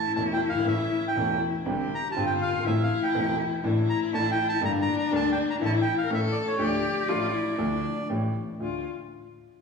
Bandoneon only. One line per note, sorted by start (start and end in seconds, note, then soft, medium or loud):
0.00 0.13 A5 loud
0.16 0.24 A5 medium
0.33 0.41 G5 medium
0.49 0.66 F5 medium
0.68 1.06 E5 medium
1.08 1.41 G5 medium
1.94 2.08 A#5 medium
2.12 2.25 A5 medium
2.26 2.33 G5 medium
2.42 2.64 F5 medium
2.66 2.83 E5 medium
2.83 3.04 F5 medium
3.03 3.37 G5 medium
3.89 4.00 A#5 loud
4.14 4.30 A5 loud
4.32 4.47 G5 loud
4.49 4.63 A5 loud
4.65 4.72 A#5 loud
4.82 4.96 A#5 loud
4.99 5.12 A#5 loud
5.16 5.30 A5 loud
5.32 5.38 G5 medium
5.50 5.56 A#5 medium
5.65 5.72 A5 medium
5.82 5.95 G5 medium
5.98 6.11 F5 medium
6.14 6.21 E5 medium
6.32 6.38 D5 medium
6.47 6.62 C#5 medium
6.63 8.08 D5 medium